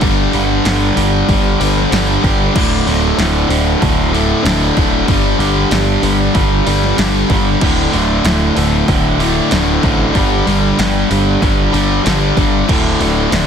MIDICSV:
0, 0, Header, 1, 5, 480
1, 0, Start_track
1, 0, Tempo, 633580
1, 11, Time_signature, 4, 2, 24, 8
1, 10203, End_track
2, 0, Start_track
2, 0, Title_t, "Distorted electric guitar"
2, 0, Program_c, 0, 30
2, 15, Note_on_c, 0, 43, 96
2, 23, Note_on_c, 0, 50, 101
2, 26, Note_on_c, 0, 55, 127
2, 239, Note_off_c, 0, 43, 0
2, 247, Note_off_c, 0, 50, 0
2, 248, Note_on_c, 0, 43, 79
2, 252, Note_off_c, 0, 55, 0
2, 256, Note_on_c, 0, 50, 82
2, 261, Note_on_c, 0, 55, 94
2, 490, Note_off_c, 0, 43, 0
2, 492, Note_off_c, 0, 50, 0
2, 495, Note_off_c, 0, 55, 0
2, 499, Note_on_c, 0, 43, 107
2, 501, Note_on_c, 0, 50, 116
2, 504, Note_on_c, 0, 55, 110
2, 721, Note_off_c, 0, 43, 0
2, 726, Note_off_c, 0, 50, 0
2, 727, Note_off_c, 0, 55, 0
2, 730, Note_on_c, 0, 43, 86
2, 735, Note_on_c, 0, 50, 107
2, 736, Note_on_c, 0, 55, 93
2, 965, Note_off_c, 0, 43, 0
2, 969, Note_off_c, 0, 50, 0
2, 972, Note_off_c, 0, 55, 0
2, 974, Note_on_c, 0, 43, 110
2, 978, Note_on_c, 0, 50, 102
2, 981, Note_on_c, 0, 55, 108
2, 1198, Note_off_c, 0, 43, 0
2, 1207, Note_on_c, 0, 43, 90
2, 1208, Note_off_c, 0, 50, 0
2, 1208, Note_off_c, 0, 55, 0
2, 1217, Note_on_c, 0, 50, 111
2, 1217, Note_on_c, 0, 55, 94
2, 1445, Note_off_c, 0, 43, 0
2, 1450, Note_off_c, 0, 50, 0
2, 1452, Note_off_c, 0, 55, 0
2, 1454, Note_on_c, 0, 43, 108
2, 1459, Note_on_c, 0, 50, 110
2, 1461, Note_on_c, 0, 55, 127
2, 1677, Note_off_c, 0, 43, 0
2, 1680, Note_off_c, 0, 50, 0
2, 1684, Note_off_c, 0, 55, 0
2, 1686, Note_on_c, 0, 43, 97
2, 1689, Note_on_c, 0, 50, 105
2, 1693, Note_on_c, 0, 55, 107
2, 1914, Note_off_c, 0, 43, 0
2, 1916, Note_off_c, 0, 50, 0
2, 1918, Note_off_c, 0, 55, 0
2, 1928, Note_on_c, 0, 38, 109
2, 1933, Note_on_c, 0, 45, 107
2, 1938, Note_on_c, 0, 50, 107
2, 2163, Note_off_c, 0, 38, 0
2, 2168, Note_off_c, 0, 45, 0
2, 2169, Note_off_c, 0, 50, 0
2, 2172, Note_on_c, 0, 38, 82
2, 2177, Note_on_c, 0, 45, 97
2, 2178, Note_on_c, 0, 50, 89
2, 2397, Note_off_c, 0, 38, 0
2, 2404, Note_off_c, 0, 45, 0
2, 2406, Note_on_c, 0, 38, 107
2, 2408, Note_off_c, 0, 50, 0
2, 2413, Note_on_c, 0, 45, 116
2, 2417, Note_on_c, 0, 50, 126
2, 2629, Note_off_c, 0, 38, 0
2, 2636, Note_off_c, 0, 45, 0
2, 2638, Note_on_c, 0, 38, 97
2, 2641, Note_off_c, 0, 50, 0
2, 2645, Note_on_c, 0, 45, 93
2, 2650, Note_on_c, 0, 50, 98
2, 2880, Note_off_c, 0, 38, 0
2, 2886, Note_off_c, 0, 45, 0
2, 2889, Note_off_c, 0, 50, 0
2, 2889, Note_on_c, 0, 38, 101
2, 2896, Note_on_c, 0, 45, 113
2, 2898, Note_on_c, 0, 50, 124
2, 3112, Note_off_c, 0, 38, 0
2, 3119, Note_off_c, 0, 45, 0
2, 3122, Note_on_c, 0, 38, 92
2, 3126, Note_off_c, 0, 50, 0
2, 3128, Note_on_c, 0, 45, 104
2, 3135, Note_on_c, 0, 50, 92
2, 3352, Note_off_c, 0, 38, 0
2, 3356, Note_off_c, 0, 45, 0
2, 3361, Note_on_c, 0, 38, 119
2, 3362, Note_off_c, 0, 50, 0
2, 3365, Note_on_c, 0, 45, 104
2, 3371, Note_on_c, 0, 50, 125
2, 3591, Note_off_c, 0, 38, 0
2, 3594, Note_off_c, 0, 45, 0
2, 3599, Note_off_c, 0, 50, 0
2, 3600, Note_on_c, 0, 38, 95
2, 3603, Note_on_c, 0, 45, 87
2, 3608, Note_on_c, 0, 50, 99
2, 3831, Note_off_c, 0, 38, 0
2, 3832, Note_off_c, 0, 50, 0
2, 3833, Note_off_c, 0, 45, 0
2, 3837, Note_on_c, 0, 43, 110
2, 3841, Note_on_c, 0, 50, 101
2, 3844, Note_on_c, 0, 55, 97
2, 4070, Note_off_c, 0, 43, 0
2, 4075, Note_off_c, 0, 50, 0
2, 4078, Note_off_c, 0, 55, 0
2, 4079, Note_on_c, 0, 43, 70
2, 4084, Note_on_c, 0, 50, 84
2, 4087, Note_on_c, 0, 55, 91
2, 4309, Note_off_c, 0, 43, 0
2, 4316, Note_off_c, 0, 50, 0
2, 4318, Note_on_c, 0, 43, 110
2, 4319, Note_off_c, 0, 55, 0
2, 4325, Note_on_c, 0, 50, 106
2, 4328, Note_on_c, 0, 55, 112
2, 4551, Note_off_c, 0, 43, 0
2, 4557, Note_off_c, 0, 50, 0
2, 4561, Note_on_c, 0, 43, 96
2, 4563, Note_off_c, 0, 55, 0
2, 4566, Note_on_c, 0, 50, 85
2, 4572, Note_on_c, 0, 55, 107
2, 4801, Note_off_c, 0, 43, 0
2, 4804, Note_off_c, 0, 50, 0
2, 4808, Note_off_c, 0, 55, 0
2, 4811, Note_on_c, 0, 43, 96
2, 4813, Note_on_c, 0, 50, 107
2, 4818, Note_on_c, 0, 55, 108
2, 5048, Note_off_c, 0, 43, 0
2, 5052, Note_off_c, 0, 50, 0
2, 5053, Note_off_c, 0, 55, 0
2, 5057, Note_on_c, 0, 43, 91
2, 5061, Note_on_c, 0, 50, 95
2, 5062, Note_on_c, 0, 55, 92
2, 5281, Note_off_c, 0, 43, 0
2, 5286, Note_off_c, 0, 50, 0
2, 5290, Note_on_c, 0, 43, 126
2, 5292, Note_off_c, 0, 55, 0
2, 5295, Note_on_c, 0, 50, 124
2, 5301, Note_on_c, 0, 55, 108
2, 5520, Note_off_c, 0, 43, 0
2, 5529, Note_on_c, 0, 43, 90
2, 5530, Note_off_c, 0, 50, 0
2, 5531, Note_off_c, 0, 55, 0
2, 5539, Note_on_c, 0, 50, 90
2, 5540, Note_on_c, 0, 55, 104
2, 5755, Note_off_c, 0, 43, 0
2, 5760, Note_off_c, 0, 50, 0
2, 5761, Note_off_c, 0, 55, 0
2, 5766, Note_on_c, 0, 38, 95
2, 5771, Note_on_c, 0, 45, 100
2, 5776, Note_on_c, 0, 50, 110
2, 5993, Note_off_c, 0, 38, 0
2, 5999, Note_off_c, 0, 45, 0
2, 6003, Note_on_c, 0, 38, 78
2, 6007, Note_off_c, 0, 50, 0
2, 6008, Note_on_c, 0, 45, 74
2, 6016, Note_on_c, 0, 50, 91
2, 6234, Note_off_c, 0, 38, 0
2, 6239, Note_off_c, 0, 45, 0
2, 6243, Note_on_c, 0, 38, 94
2, 6244, Note_off_c, 0, 50, 0
2, 6248, Note_on_c, 0, 45, 106
2, 6253, Note_on_c, 0, 50, 112
2, 6471, Note_off_c, 0, 38, 0
2, 6475, Note_off_c, 0, 45, 0
2, 6480, Note_on_c, 0, 38, 93
2, 6481, Note_off_c, 0, 50, 0
2, 6485, Note_on_c, 0, 45, 110
2, 6490, Note_on_c, 0, 50, 111
2, 6709, Note_off_c, 0, 38, 0
2, 6713, Note_off_c, 0, 45, 0
2, 6717, Note_off_c, 0, 50, 0
2, 6718, Note_on_c, 0, 38, 109
2, 6722, Note_on_c, 0, 45, 118
2, 6726, Note_on_c, 0, 50, 104
2, 6957, Note_off_c, 0, 38, 0
2, 6963, Note_off_c, 0, 45, 0
2, 6966, Note_off_c, 0, 50, 0
2, 6966, Note_on_c, 0, 38, 96
2, 6972, Note_on_c, 0, 45, 93
2, 6975, Note_on_c, 0, 50, 100
2, 7201, Note_off_c, 0, 38, 0
2, 7207, Note_off_c, 0, 45, 0
2, 7210, Note_on_c, 0, 38, 110
2, 7212, Note_off_c, 0, 50, 0
2, 7216, Note_on_c, 0, 45, 115
2, 7221, Note_on_c, 0, 50, 127
2, 7440, Note_off_c, 0, 38, 0
2, 7449, Note_off_c, 0, 45, 0
2, 7450, Note_on_c, 0, 38, 95
2, 7452, Note_off_c, 0, 50, 0
2, 7458, Note_on_c, 0, 45, 82
2, 7461, Note_on_c, 0, 50, 92
2, 7675, Note_off_c, 0, 38, 0
2, 7679, Note_off_c, 0, 45, 0
2, 7681, Note_off_c, 0, 50, 0
2, 7690, Note_on_c, 0, 43, 99
2, 7696, Note_on_c, 0, 50, 112
2, 7700, Note_on_c, 0, 55, 112
2, 7922, Note_off_c, 0, 43, 0
2, 7927, Note_off_c, 0, 50, 0
2, 7930, Note_off_c, 0, 55, 0
2, 7931, Note_on_c, 0, 43, 84
2, 7936, Note_on_c, 0, 50, 93
2, 7939, Note_on_c, 0, 55, 99
2, 8156, Note_off_c, 0, 43, 0
2, 8162, Note_off_c, 0, 50, 0
2, 8164, Note_off_c, 0, 55, 0
2, 8166, Note_on_c, 0, 43, 102
2, 8171, Note_on_c, 0, 50, 103
2, 8173, Note_on_c, 0, 55, 123
2, 8395, Note_off_c, 0, 43, 0
2, 8400, Note_off_c, 0, 50, 0
2, 8404, Note_on_c, 0, 43, 102
2, 8405, Note_off_c, 0, 55, 0
2, 8409, Note_on_c, 0, 50, 102
2, 8414, Note_on_c, 0, 55, 95
2, 8635, Note_off_c, 0, 43, 0
2, 8639, Note_off_c, 0, 50, 0
2, 8644, Note_on_c, 0, 43, 96
2, 8646, Note_off_c, 0, 55, 0
2, 8648, Note_on_c, 0, 50, 118
2, 8655, Note_on_c, 0, 55, 118
2, 8873, Note_off_c, 0, 43, 0
2, 8875, Note_off_c, 0, 50, 0
2, 8880, Note_off_c, 0, 55, 0
2, 8882, Note_on_c, 0, 43, 101
2, 8884, Note_on_c, 0, 50, 109
2, 8889, Note_on_c, 0, 55, 97
2, 9106, Note_off_c, 0, 43, 0
2, 9113, Note_off_c, 0, 50, 0
2, 9115, Note_on_c, 0, 43, 118
2, 9116, Note_off_c, 0, 55, 0
2, 9122, Note_on_c, 0, 50, 123
2, 9125, Note_on_c, 0, 55, 113
2, 9357, Note_off_c, 0, 43, 0
2, 9361, Note_off_c, 0, 50, 0
2, 9364, Note_off_c, 0, 55, 0
2, 9366, Note_on_c, 0, 43, 93
2, 9370, Note_on_c, 0, 50, 97
2, 9373, Note_on_c, 0, 55, 86
2, 9593, Note_off_c, 0, 43, 0
2, 9596, Note_off_c, 0, 50, 0
2, 9597, Note_off_c, 0, 55, 0
2, 9605, Note_on_c, 0, 38, 104
2, 9610, Note_on_c, 0, 45, 109
2, 9615, Note_on_c, 0, 50, 112
2, 9839, Note_off_c, 0, 38, 0
2, 9839, Note_off_c, 0, 45, 0
2, 9842, Note_on_c, 0, 38, 94
2, 9846, Note_off_c, 0, 50, 0
2, 9848, Note_on_c, 0, 45, 102
2, 9849, Note_on_c, 0, 50, 112
2, 10082, Note_off_c, 0, 45, 0
2, 10083, Note_off_c, 0, 38, 0
2, 10086, Note_on_c, 0, 38, 116
2, 10091, Note_on_c, 0, 45, 114
2, 10092, Note_off_c, 0, 50, 0
2, 10095, Note_on_c, 0, 50, 125
2, 10203, Note_off_c, 0, 38, 0
2, 10203, Note_off_c, 0, 45, 0
2, 10203, Note_off_c, 0, 50, 0
2, 10203, End_track
3, 0, Start_track
3, 0, Title_t, "Distorted electric guitar"
3, 0, Program_c, 1, 30
3, 3153, Note_on_c, 1, 38, 80
3, 3361, Note_off_c, 1, 38, 0
3, 3876, Note_on_c, 1, 55, 113
3, 5034, Note_off_c, 1, 55, 0
3, 6999, Note_on_c, 1, 38, 73
3, 7196, Note_off_c, 1, 38, 0
3, 10203, End_track
4, 0, Start_track
4, 0, Title_t, "Picked electric bass"
4, 0, Program_c, 2, 34
4, 11, Note_on_c, 2, 31, 92
4, 201, Note_off_c, 2, 31, 0
4, 254, Note_on_c, 2, 31, 95
4, 443, Note_off_c, 2, 31, 0
4, 493, Note_on_c, 2, 31, 100
4, 682, Note_off_c, 2, 31, 0
4, 734, Note_on_c, 2, 31, 97
4, 922, Note_off_c, 2, 31, 0
4, 977, Note_on_c, 2, 31, 103
4, 1164, Note_off_c, 2, 31, 0
4, 1212, Note_on_c, 2, 31, 94
4, 1401, Note_off_c, 2, 31, 0
4, 1450, Note_on_c, 2, 31, 101
4, 1640, Note_off_c, 2, 31, 0
4, 1694, Note_on_c, 2, 31, 108
4, 1883, Note_off_c, 2, 31, 0
4, 1935, Note_on_c, 2, 26, 84
4, 2123, Note_off_c, 2, 26, 0
4, 2169, Note_on_c, 2, 26, 97
4, 2360, Note_off_c, 2, 26, 0
4, 2408, Note_on_c, 2, 26, 89
4, 2598, Note_off_c, 2, 26, 0
4, 2640, Note_on_c, 2, 26, 86
4, 2834, Note_off_c, 2, 26, 0
4, 2898, Note_on_c, 2, 26, 101
4, 3274, Note_off_c, 2, 26, 0
4, 3366, Note_on_c, 2, 26, 91
4, 3557, Note_off_c, 2, 26, 0
4, 3611, Note_on_c, 2, 26, 103
4, 3801, Note_off_c, 2, 26, 0
4, 3849, Note_on_c, 2, 31, 89
4, 4039, Note_off_c, 2, 31, 0
4, 4079, Note_on_c, 2, 31, 105
4, 4273, Note_off_c, 2, 31, 0
4, 4323, Note_on_c, 2, 31, 96
4, 4516, Note_off_c, 2, 31, 0
4, 4564, Note_on_c, 2, 31, 89
4, 4756, Note_off_c, 2, 31, 0
4, 4812, Note_on_c, 2, 31, 114
4, 5001, Note_off_c, 2, 31, 0
4, 5048, Note_on_c, 2, 31, 92
4, 5239, Note_off_c, 2, 31, 0
4, 5289, Note_on_c, 2, 31, 89
4, 5479, Note_off_c, 2, 31, 0
4, 5530, Note_on_c, 2, 31, 98
4, 5720, Note_off_c, 2, 31, 0
4, 5770, Note_on_c, 2, 26, 81
4, 5960, Note_off_c, 2, 26, 0
4, 6011, Note_on_c, 2, 26, 100
4, 6200, Note_off_c, 2, 26, 0
4, 6241, Note_on_c, 2, 26, 94
4, 6434, Note_off_c, 2, 26, 0
4, 6488, Note_on_c, 2, 26, 85
4, 6678, Note_off_c, 2, 26, 0
4, 6732, Note_on_c, 2, 26, 102
4, 7110, Note_off_c, 2, 26, 0
4, 7211, Note_on_c, 2, 26, 98
4, 7400, Note_off_c, 2, 26, 0
4, 7450, Note_on_c, 2, 33, 106
4, 7640, Note_off_c, 2, 33, 0
4, 7692, Note_on_c, 2, 31, 101
4, 7880, Note_off_c, 2, 31, 0
4, 7930, Note_on_c, 2, 31, 96
4, 8119, Note_off_c, 2, 31, 0
4, 8172, Note_on_c, 2, 31, 98
4, 8361, Note_off_c, 2, 31, 0
4, 8414, Note_on_c, 2, 31, 83
4, 8602, Note_off_c, 2, 31, 0
4, 8655, Note_on_c, 2, 31, 108
4, 8842, Note_off_c, 2, 31, 0
4, 8889, Note_on_c, 2, 31, 98
4, 9079, Note_off_c, 2, 31, 0
4, 9136, Note_on_c, 2, 31, 101
4, 9323, Note_off_c, 2, 31, 0
4, 9370, Note_on_c, 2, 31, 106
4, 9560, Note_off_c, 2, 31, 0
4, 9611, Note_on_c, 2, 26, 93
4, 9800, Note_off_c, 2, 26, 0
4, 9850, Note_on_c, 2, 26, 102
4, 10039, Note_off_c, 2, 26, 0
4, 10090, Note_on_c, 2, 26, 92
4, 10203, Note_off_c, 2, 26, 0
4, 10203, End_track
5, 0, Start_track
5, 0, Title_t, "Drums"
5, 9, Note_on_c, 9, 46, 79
5, 13, Note_on_c, 9, 36, 114
5, 85, Note_off_c, 9, 46, 0
5, 89, Note_off_c, 9, 36, 0
5, 252, Note_on_c, 9, 46, 62
5, 328, Note_off_c, 9, 46, 0
5, 495, Note_on_c, 9, 46, 90
5, 501, Note_on_c, 9, 38, 117
5, 570, Note_off_c, 9, 46, 0
5, 577, Note_off_c, 9, 38, 0
5, 735, Note_on_c, 9, 46, 88
5, 811, Note_off_c, 9, 46, 0
5, 975, Note_on_c, 9, 36, 110
5, 977, Note_on_c, 9, 46, 84
5, 1050, Note_off_c, 9, 36, 0
5, 1053, Note_off_c, 9, 46, 0
5, 1218, Note_on_c, 9, 46, 84
5, 1294, Note_off_c, 9, 46, 0
5, 1348, Note_on_c, 9, 38, 36
5, 1423, Note_off_c, 9, 38, 0
5, 1457, Note_on_c, 9, 46, 107
5, 1464, Note_on_c, 9, 38, 125
5, 1533, Note_off_c, 9, 46, 0
5, 1540, Note_off_c, 9, 38, 0
5, 1696, Note_on_c, 9, 36, 80
5, 1700, Note_on_c, 9, 46, 65
5, 1772, Note_off_c, 9, 36, 0
5, 1775, Note_off_c, 9, 46, 0
5, 1936, Note_on_c, 9, 36, 115
5, 1937, Note_on_c, 9, 49, 116
5, 2011, Note_off_c, 9, 36, 0
5, 2013, Note_off_c, 9, 49, 0
5, 2178, Note_on_c, 9, 46, 66
5, 2254, Note_off_c, 9, 46, 0
5, 2414, Note_on_c, 9, 46, 94
5, 2421, Note_on_c, 9, 38, 111
5, 2490, Note_off_c, 9, 46, 0
5, 2496, Note_off_c, 9, 38, 0
5, 2655, Note_on_c, 9, 46, 74
5, 2730, Note_off_c, 9, 46, 0
5, 2894, Note_on_c, 9, 46, 87
5, 2895, Note_on_c, 9, 36, 119
5, 2970, Note_off_c, 9, 46, 0
5, 2971, Note_off_c, 9, 36, 0
5, 3140, Note_on_c, 9, 46, 67
5, 3216, Note_off_c, 9, 46, 0
5, 3375, Note_on_c, 9, 46, 98
5, 3382, Note_on_c, 9, 38, 113
5, 3451, Note_off_c, 9, 46, 0
5, 3458, Note_off_c, 9, 38, 0
5, 3613, Note_on_c, 9, 36, 87
5, 3613, Note_on_c, 9, 46, 63
5, 3689, Note_off_c, 9, 36, 0
5, 3689, Note_off_c, 9, 46, 0
5, 3850, Note_on_c, 9, 46, 86
5, 3852, Note_on_c, 9, 36, 105
5, 3926, Note_off_c, 9, 46, 0
5, 3928, Note_off_c, 9, 36, 0
5, 4093, Note_on_c, 9, 46, 60
5, 4168, Note_off_c, 9, 46, 0
5, 4328, Note_on_c, 9, 46, 91
5, 4335, Note_on_c, 9, 38, 117
5, 4403, Note_off_c, 9, 46, 0
5, 4410, Note_off_c, 9, 38, 0
5, 4569, Note_on_c, 9, 46, 76
5, 4645, Note_off_c, 9, 46, 0
5, 4809, Note_on_c, 9, 46, 95
5, 4811, Note_on_c, 9, 36, 115
5, 4885, Note_off_c, 9, 46, 0
5, 4887, Note_off_c, 9, 36, 0
5, 5050, Note_on_c, 9, 46, 81
5, 5126, Note_off_c, 9, 46, 0
5, 5179, Note_on_c, 9, 38, 35
5, 5255, Note_off_c, 9, 38, 0
5, 5289, Note_on_c, 9, 46, 102
5, 5296, Note_on_c, 9, 38, 127
5, 5365, Note_off_c, 9, 46, 0
5, 5372, Note_off_c, 9, 38, 0
5, 5529, Note_on_c, 9, 46, 63
5, 5530, Note_on_c, 9, 36, 81
5, 5604, Note_off_c, 9, 46, 0
5, 5606, Note_off_c, 9, 36, 0
5, 5768, Note_on_c, 9, 57, 108
5, 5770, Note_on_c, 9, 36, 112
5, 5844, Note_off_c, 9, 57, 0
5, 5846, Note_off_c, 9, 36, 0
5, 6011, Note_on_c, 9, 46, 62
5, 6087, Note_off_c, 9, 46, 0
5, 6247, Note_on_c, 9, 46, 106
5, 6254, Note_on_c, 9, 38, 127
5, 6323, Note_off_c, 9, 46, 0
5, 6330, Note_off_c, 9, 38, 0
5, 6489, Note_on_c, 9, 46, 80
5, 6565, Note_off_c, 9, 46, 0
5, 6729, Note_on_c, 9, 36, 120
5, 6729, Note_on_c, 9, 46, 102
5, 6805, Note_off_c, 9, 36, 0
5, 6805, Note_off_c, 9, 46, 0
5, 6971, Note_on_c, 9, 46, 72
5, 7047, Note_off_c, 9, 46, 0
5, 7206, Note_on_c, 9, 46, 96
5, 7213, Note_on_c, 9, 38, 126
5, 7281, Note_off_c, 9, 46, 0
5, 7288, Note_off_c, 9, 38, 0
5, 7449, Note_on_c, 9, 46, 59
5, 7450, Note_on_c, 9, 36, 87
5, 7524, Note_off_c, 9, 46, 0
5, 7526, Note_off_c, 9, 36, 0
5, 7690, Note_on_c, 9, 46, 92
5, 7691, Note_on_c, 9, 36, 95
5, 7765, Note_off_c, 9, 46, 0
5, 7766, Note_off_c, 9, 36, 0
5, 7934, Note_on_c, 9, 46, 58
5, 8009, Note_off_c, 9, 46, 0
5, 8173, Note_on_c, 9, 46, 98
5, 8180, Note_on_c, 9, 38, 123
5, 8249, Note_off_c, 9, 46, 0
5, 8256, Note_off_c, 9, 38, 0
5, 8416, Note_on_c, 9, 46, 72
5, 8491, Note_off_c, 9, 46, 0
5, 8653, Note_on_c, 9, 36, 121
5, 8657, Note_on_c, 9, 46, 91
5, 8729, Note_off_c, 9, 36, 0
5, 8733, Note_off_c, 9, 46, 0
5, 8894, Note_on_c, 9, 46, 67
5, 8970, Note_off_c, 9, 46, 0
5, 9136, Note_on_c, 9, 46, 110
5, 9143, Note_on_c, 9, 38, 120
5, 9212, Note_off_c, 9, 46, 0
5, 9218, Note_off_c, 9, 38, 0
5, 9372, Note_on_c, 9, 36, 84
5, 9373, Note_on_c, 9, 46, 75
5, 9447, Note_off_c, 9, 36, 0
5, 9449, Note_off_c, 9, 46, 0
5, 9612, Note_on_c, 9, 36, 108
5, 9616, Note_on_c, 9, 57, 103
5, 9688, Note_off_c, 9, 36, 0
5, 9692, Note_off_c, 9, 57, 0
5, 9854, Note_on_c, 9, 46, 74
5, 9929, Note_off_c, 9, 46, 0
5, 10094, Note_on_c, 9, 46, 111
5, 10101, Note_on_c, 9, 38, 125
5, 10170, Note_off_c, 9, 46, 0
5, 10176, Note_off_c, 9, 38, 0
5, 10203, End_track
0, 0, End_of_file